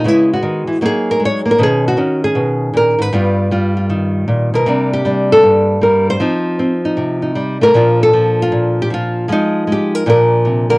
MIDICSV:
0, 0, Header, 1, 2, 480
1, 0, Start_track
1, 0, Key_signature, -2, "major"
1, 0, Tempo, 384862
1, 60, Time_signature, 4, 2, 24, 8
1, 13447, End_track
2, 0, Start_track
2, 0, Title_t, "Nylon-string guitar"
2, 0, Program_c, 0, 24
2, 53, Note_on_c, 0, 49, 64
2, 66, Note_on_c, 0, 56, 46
2, 71, Note_on_c, 0, 59, 45
2, 103, Note_on_c, 0, 64, 86
2, 394, Note_off_c, 0, 64, 0
2, 418, Note_on_c, 0, 66, 84
2, 526, Note_off_c, 0, 49, 0
2, 531, Note_on_c, 0, 51, 55
2, 835, Note_off_c, 0, 51, 0
2, 840, Note_on_c, 0, 52, 56
2, 1001, Note_off_c, 0, 56, 0
2, 1003, Note_off_c, 0, 59, 0
2, 1006, Note_off_c, 0, 52, 0
2, 1011, Note_on_c, 0, 54, 61
2, 1022, Note_on_c, 0, 58, 44
2, 1028, Note_on_c, 0, 63, 44
2, 1040, Note_off_c, 0, 66, 0
2, 1067, Note_on_c, 0, 68, 91
2, 1383, Note_on_c, 0, 70, 88
2, 1488, Note_off_c, 0, 58, 0
2, 1493, Note_on_c, 0, 56, 59
2, 1523, Note_off_c, 0, 70, 0
2, 1563, Note_on_c, 0, 73, 93
2, 1730, Note_off_c, 0, 73, 0
2, 1807, Note_off_c, 0, 56, 0
2, 1813, Note_on_c, 0, 58, 60
2, 1834, Note_off_c, 0, 68, 0
2, 1882, Note_on_c, 0, 70, 91
2, 1952, Note_off_c, 0, 54, 0
2, 1975, Note_on_c, 0, 47, 71
2, 1977, Note_off_c, 0, 58, 0
2, 1983, Note_on_c, 0, 51, 49
2, 1990, Note_off_c, 0, 63, 0
2, 1995, Note_on_c, 0, 61, 45
2, 2012, Note_off_c, 0, 70, 0
2, 2035, Note_on_c, 0, 68, 93
2, 2318, Note_off_c, 0, 68, 0
2, 2343, Note_on_c, 0, 66, 84
2, 2443, Note_off_c, 0, 51, 0
2, 2451, Note_off_c, 0, 61, 0
2, 2454, Note_off_c, 0, 47, 0
2, 2458, Note_on_c, 0, 51, 61
2, 2466, Note_on_c, 0, 61, 47
2, 2790, Note_off_c, 0, 66, 0
2, 2795, Note_on_c, 0, 68, 89
2, 2932, Note_on_c, 0, 47, 56
2, 3406, Note_off_c, 0, 47, 0
2, 3411, Note_on_c, 0, 46, 58
2, 3453, Note_on_c, 0, 70, 94
2, 3719, Note_off_c, 0, 46, 0
2, 3724, Note_on_c, 0, 44, 58
2, 3763, Note_off_c, 0, 70, 0
2, 3763, Note_on_c, 0, 71, 86
2, 3873, Note_off_c, 0, 51, 0
2, 3877, Note_off_c, 0, 61, 0
2, 3891, Note_off_c, 0, 44, 0
2, 3899, Note_on_c, 0, 43, 72
2, 3905, Note_off_c, 0, 68, 0
2, 3905, Note_on_c, 0, 55, 47
2, 3915, Note_on_c, 0, 59, 46
2, 3922, Note_on_c, 0, 65, 47
2, 4376, Note_off_c, 0, 55, 0
2, 4381, Note_on_c, 0, 55, 57
2, 4386, Note_off_c, 0, 65, 0
2, 4391, Note_on_c, 0, 65, 47
2, 4695, Note_off_c, 0, 65, 0
2, 4700, Note_on_c, 0, 65, 43
2, 4859, Note_on_c, 0, 51, 60
2, 5328, Note_off_c, 0, 43, 0
2, 5333, Note_on_c, 0, 46, 55
2, 5644, Note_off_c, 0, 46, 0
2, 5658, Note_on_c, 0, 47, 56
2, 5660, Note_off_c, 0, 71, 0
2, 5678, Note_on_c, 0, 70, 86
2, 5792, Note_off_c, 0, 51, 0
2, 5799, Note_off_c, 0, 59, 0
2, 5815, Note_on_c, 0, 48, 71
2, 5816, Note_off_c, 0, 47, 0
2, 5818, Note_off_c, 0, 55, 0
2, 5823, Note_on_c, 0, 55, 48
2, 5834, Note_on_c, 0, 58, 47
2, 5837, Note_off_c, 0, 65, 0
2, 5842, Note_on_c, 0, 62, 47
2, 6139, Note_off_c, 0, 70, 0
2, 6155, Note_on_c, 0, 67, 78
2, 6294, Note_off_c, 0, 55, 0
2, 6295, Note_off_c, 0, 62, 0
2, 6299, Note_on_c, 0, 55, 55
2, 6309, Note_on_c, 0, 62, 43
2, 6617, Note_off_c, 0, 67, 0
2, 6639, Note_on_c, 0, 69, 85
2, 6770, Note_off_c, 0, 48, 0
2, 6770, Note_on_c, 0, 43, 54
2, 7238, Note_off_c, 0, 55, 0
2, 7253, Note_on_c, 0, 55, 64
2, 7266, Note_off_c, 0, 69, 0
2, 7272, Note_on_c, 0, 70, 84
2, 7573, Note_off_c, 0, 70, 0
2, 7608, Note_on_c, 0, 72, 93
2, 7710, Note_off_c, 0, 55, 0
2, 7728, Note_off_c, 0, 43, 0
2, 7731, Note_on_c, 0, 53, 67
2, 7734, Note_off_c, 0, 58, 0
2, 7738, Note_off_c, 0, 62, 0
2, 7739, Note_on_c, 0, 60, 48
2, 7750, Note_on_c, 0, 63, 50
2, 8206, Note_off_c, 0, 60, 0
2, 8221, Note_on_c, 0, 60, 57
2, 8529, Note_off_c, 0, 63, 0
2, 8544, Note_on_c, 0, 63, 46
2, 8690, Note_on_c, 0, 48, 59
2, 8990, Note_off_c, 0, 63, 0
2, 9005, Note_on_c, 0, 63, 40
2, 9164, Note_off_c, 0, 53, 0
2, 9169, Note_on_c, 0, 55, 65
2, 9482, Note_off_c, 0, 55, 0
2, 9493, Note_on_c, 0, 57, 56
2, 9505, Note_off_c, 0, 72, 0
2, 9515, Note_on_c, 0, 70, 104
2, 9630, Note_off_c, 0, 63, 0
2, 9635, Note_off_c, 0, 60, 0
2, 9649, Note_off_c, 0, 48, 0
2, 9652, Note_off_c, 0, 57, 0
2, 9652, Note_on_c, 0, 46, 70
2, 9657, Note_on_c, 0, 53, 52
2, 9666, Note_on_c, 0, 62, 49
2, 9675, Note_on_c, 0, 65, 50
2, 9979, Note_off_c, 0, 70, 0
2, 10011, Note_on_c, 0, 69, 94
2, 10136, Note_off_c, 0, 53, 0
2, 10141, Note_on_c, 0, 53, 55
2, 10497, Note_off_c, 0, 65, 0
2, 10502, Note_on_c, 0, 65, 90
2, 10608, Note_off_c, 0, 46, 0
2, 10623, Note_on_c, 0, 46, 58
2, 10948, Note_off_c, 0, 69, 0
2, 10997, Note_on_c, 0, 67, 93
2, 11075, Note_off_c, 0, 67, 0
2, 11086, Note_off_c, 0, 53, 0
2, 11101, Note_on_c, 0, 53, 57
2, 11121, Note_off_c, 0, 65, 0
2, 11145, Note_on_c, 0, 65, 80
2, 11559, Note_off_c, 0, 46, 0
2, 11560, Note_off_c, 0, 53, 0
2, 11562, Note_off_c, 0, 62, 0
2, 11575, Note_on_c, 0, 53, 68
2, 11586, Note_on_c, 0, 56, 50
2, 11600, Note_off_c, 0, 65, 0
2, 11627, Note_on_c, 0, 63, 90
2, 12047, Note_off_c, 0, 56, 0
2, 12062, Note_on_c, 0, 56, 54
2, 12124, Note_on_c, 0, 67, 76
2, 12407, Note_off_c, 0, 67, 0
2, 12407, Note_on_c, 0, 70, 91
2, 12517, Note_off_c, 0, 53, 0
2, 12520, Note_off_c, 0, 56, 0
2, 12547, Note_on_c, 0, 46, 70
2, 12555, Note_off_c, 0, 70, 0
2, 12555, Note_on_c, 0, 53, 47
2, 12558, Note_off_c, 0, 63, 0
2, 12563, Note_on_c, 0, 62, 42
2, 12570, Note_on_c, 0, 65, 44
2, 12591, Note_on_c, 0, 70, 79
2, 13033, Note_on_c, 0, 48, 54
2, 13331, Note_off_c, 0, 70, 0
2, 13335, Note_off_c, 0, 48, 0
2, 13340, Note_on_c, 0, 50, 55
2, 13346, Note_on_c, 0, 70, 85
2, 13447, Note_off_c, 0, 46, 0
2, 13447, Note_off_c, 0, 50, 0
2, 13447, Note_off_c, 0, 53, 0
2, 13447, Note_off_c, 0, 62, 0
2, 13447, Note_off_c, 0, 65, 0
2, 13447, Note_off_c, 0, 70, 0
2, 13447, End_track
0, 0, End_of_file